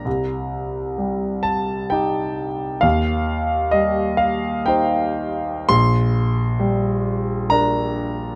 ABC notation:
X:1
M:3/4
L:1/8
Q:1/4=65
K:Cdor
V:1 name="Grand piano"
b3 a g2 | f2 e f g2 | c'4 b2 |]
V:2 name="Grand piano"
C,,2 G,2 [EG]2 | E,,2 G,2 [Ec]2 | B,,,2 G,2 [DB]2 |]